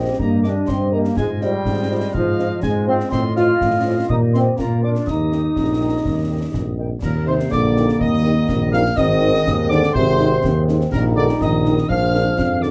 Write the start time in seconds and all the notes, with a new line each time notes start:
Already playing: A#1 C4 G4 D#5
0.18 G2 A#3 A#5, concert bass drum
0.43 D4 G4 A#4 D#5 D6, snare
0.67 G2 C4 C6, concert bass drum, snare
0.92 A#3 G4 A#4 D#5 A#5
1.05 snare
1.16 G#2 G#3 F4 D#5 G#5, concert bass drum, snare
1.41 G3 F4 C5 D#5 F5 G5, snare
1.65 G#2, concert bass drum, snare
1.90 F4 C5 D#5 F5
2.13 G#2 F3 F5, concert bass drum
2.39 F4 C5 D#5 F5, snare
2.62 G#2 G#3 G#5, concert bass drum, snare
2.87 C4 F4 C5 D#5 F5 C6
3.00 snare
3.11 A2 C4 F4 D#5 C6, concert bass drum, snare, crash
3.35 F4 C5 D#5 F5 F6, snare
3.61 A2, concert bass drum, snare
3.85 F4 C5 D#5 F5
4.09 A#2 D#4 G4 D#6, concert bass drum
4.33 C4 A#4 D#5 G5 C6, snare
4.57 A#2 A#3 F4 D5 A#5, concert bass drum, snare
4.82 D4 A#4 D5 F5 D6
4.95 snare
5.06 D#2 D#4 G4 D#5 D#6, concert bass drum, snare
5.31 A#4 D#5 G5, snare
5.56 A#1, concert bass drum, snare
5.79 A#4 D#5 G5
6.05 D#2, concert bass drum, snare
6.29 A#4 D#5 G5
6.54 A#1, concert bass drum, snare
6.78 A#4 D#5 G5
7.02 D#2 A#2 G3 A#3 A#4 A#5, concert bass drum, snare, crash
7.26 C3 G3 D#4 A#4 C5 C6
7.39 snare
7.50 A#1 D3 D5 D6, concert bass drum, snare
7.75 G3 D#4 A#4, snare
7.89 snare
7.99 D#2 D#3 D#5 D#6, concert bass drum
8.23 G3 D#4 A#4, snare
8.48 A#1, concert bass drum, snare
8.71 F3 G3 D#4 A#4 F5 F6, snare
8.85 snare
8.96 G#1 D#3 G#3 C4 D#5 D#6, concert bass drum, snare
9.21 G#3 D#4 C5
9.34 snare
9.46 D#2, concert bass drum, snare
9.69 D3 G#3 D#4 C5 D5 D6, snare
9.83 snare
9.92 G#1 C3 C5 C6, concert bass drum
10.18 G#3 D#4 C5, snare
10.43 D#2, concert bass drum, snare
10.68 G#3 D#4 C5, snare
10.81 snare
10.91 A#1 A#2 G3 D#4 A#4 A#5, concert bass drum, snare, crash
11.15 D3 G3 D#4 A#4 D5 D6
11.29 snare
11.40 A#1 D#3 D#5 D#6, concert bass drum, snare
11.65 G3 D#4 A#4, snare
11.78 snare
11.88 A#1 F3 G#3 D4 F5 F6, concert bass drum
12.14 G#3 D4 A#4, snare
12.38 F2, concert bass drum, snare
12.62 D3 G#3 D4 A#4 D5 D6, snare